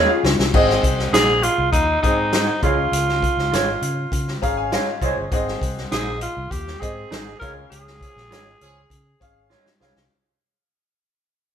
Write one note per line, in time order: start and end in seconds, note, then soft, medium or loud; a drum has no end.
0.00 0.22 C#4 medium
0.00 0.23 G#4 medium
0.00 0.24 G#4 loud
0.00 0.23 F5 loud
0.09 0.52 F4 medium
0.24 0.35 C#2 medium
0.24 snare loud
0.39 0.50 C2 medium
0.39 snare medium
0.54 0.77 G#1 loud
0.54 1.40 G#2 medium
0.54 1.31 C4 medium
0.54 1.32 G#4 medium
0.54 1.32 D#5 loud
0.54 kick loud
0.54 crash medium
0.69 snare soft
0.83 1.06 C2 medium
0.83 kick medium
0.83 closed hi-hat medium
0.99 snare soft
1.13 1.47 A#1 medium
1.13 1.28 D#4 medium
1.13 1.45 G#4 loud
1.13 1.28 G#4 medium
1.13 1.29 C5 medium
1.13 snare loud
1.13 closed hi-hat medium
1.43 1.72 F4 loud
1.43 closed hi-hat medium
1.58 1.70 C2 medium
1.72 1.96 D#2 medium
1.72 2.00 D#4 loud
1.72 kick loud
1.72 closed hi-hat medium
2.03 2.49 G#2 medium
2.03 2.42 C4 medium
2.03 2.59 D#4 medium
2.03 2.42 G#4 medium
2.03 2.43 D#5 medium
2.03 kick loud
2.03 closed hi-hat medium
2.33 2.47 D#4 medium
2.33 2.48 G#4 loud
2.33 2.48 C5 medium
2.33 snare loud
2.33 closed hi-hat medium
2.62 2.85 C#2 loud
2.62 3.48 C#3 medium
2.62 3.58 C#4 medium
2.62 2.74 F4 medium
2.62 4.38 F4 medium
2.62 3.59 G#4 medium
2.62 2.74 G#4 medium
2.62 2.75 C#5 medium
2.62 3.59 F5 medium
2.62 kick loud
2.62 closed hi-hat medium
2.92 3.26 C#2 medium
2.92 closed hi-hat medium
3.09 snare soft
3.23 kick medium
3.23 closed hi-hat medium
3.37 3.54 C#2 medium
3.37 snare soft
3.52 3.75 G#1 medium
3.52 3.67 F4 medium
3.52 3.67 G#4 medium
3.52 3.67 C#5 medium
3.52 snare loud
3.52 closed hi-hat medium
3.82 4.05 C#3 loud
3.82 closed hi-hat medium
4.12 4.35 C#3 loud
4.12 kick medium
4.12 closed hi-hat medium
4.28 snare soft
4.42 4.76 G#1 medium
4.42 4.81 C#4 medium
4.42 4.81 G#4 medium
4.42 4.71 F5 loud
4.42 4.56 A#5 medium
4.42 kick medium
4.42 closed hi-hat medium
4.57 4.71 G#5 medium
4.72 4.86 F4 medium
4.72 4.87 G#4 medium
4.72 4.87 C#5 medium
4.72 5.00 F5 medium
4.72 snare loud
4.72 closed hi-hat medium
5.02 5.13 C2 medium
5.02 5.21 C#4 medium
5.02 5.13 F4 medium
5.02 5.21 G#4 medium
5.02 5.13 G#4 medium
5.02 5.22 C5 medium
5.02 5.14 C#5 medium
5.02 5.30 D#5 medium
5.02 kick medium
5.02 closed hi-hat medium
5.16 5.28 G1 medium
5.32 5.55 G#1 loud
5.32 6.18 G#2 medium
5.32 6.09 C4 medium
5.32 6.10 G#4 medium
5.32 6.10 D#5 loud
5.32 kick loud
5.32 closed hi-hat medium
5.48 snare soft
5.62 5.84 C2 medium
5.62 kick loud
5.62 closed hi-hat medium
5.77 snare soft
5.92 6.26 A#1 medium
5.92 6.06 D#4 medium
5.92 6.19 G#4 loud
5.92 6.06 G#4 medium
5.92 6.07 C5 medium
5.92 snare loud
5.92 closed hi-hat medium
6.21 6.53 F4 medium
6.21 closed hi-hat medium
6.37 6.48 C2 medium
6.51 6.74 D#2 medium
6.51 6.82 G4 medium
6.51 kick medium
6.51 closed hi-hat medium
6.67 snare soft
6.81 7.04 G#2 medium
6.81 7.20 C4 medium
6.81 7.39 G#4 loud
6.81 7.20 G#4 medium
6.81 7.20 D#5 medium
6.81 kick medium
6.81 closed hi-hat medium
7.11 7.34 G#1 medium
7.11 7.25 D#4 medium
7.11 7.26 G#4 medium
7.11 7.26 C5 loud
7.11 snare loud
7.11 closed hi-hat medium
7.40 7.64 C#2 medium
7.40 8.27 C#3 medium
7.40 8.37 C#4 medium
7.40 7.52 F4 medium
7.40 8.37 G#4 medium
7.40 7.53 G#4 medium
7.40 7.53 A#4 loud
7.40 7.53 C#5 medium
7.40 8.38 F5 medium
7.40 kick loud
7.40 closed hi-hat medium
7.70 8.05 C#2 loud
7.70 9.46 G#4 loud
7.70 closed hi-hat medium
7.87 snare soft
8.01 8.13 F3 medium
8.01 8.14 C#4 medium
8.01 8.14 G#4 medium
8.01 kick medium
8.01 closed hi-hat medium
8.16 8.31 A#1 loud
8.16 snare soft
8.30 8.54 G#1 medium
8.30 8.44 F3 medium
8.30 8.44 C#4 medium
8.30 8.45 F4 medium
8.30 8.45 G#4 medium
8.30 8.44 G#4 medium
8.30 8.46 C#5 medium
8.30 snare medium
8.30 closed hi-hat medium
8.61 8.84 C#2 medium
8.61 8.81 F3 medium
8.61 8.80 C#4 medium
8.61 8.80 G#4 loud
8.61 closed hi-hat medium
8.90 9.13 C#3 medium
8.90 kick medium
8.90 closed hi-hat medium
9.20 9.55 G#1 medium
9.20 9.59 C#4 medium
9.20 9.60 G#4 medium
9.20 9.60 F5 loud
9.20 kick medium
9.20 closed hi-hat medium
9.50 9.65 F4 loud
9.50 9.65 G#4 medium
9.50 9.65 C#5 loud
9.50 snare medium
9.66 snare medium
9.80 9.92 C2 medium
9.80 10.00 C#4 medium
9.80 9.92 F4 medium
9.80 10.00 G#4 medium
9.80 9.92 G#4 medium
9.80 9.92 C#5 medium
9.80 10.00 F5 medium
9.80 snare medium
9.96 10.07 C2 medium
9.96 snare medium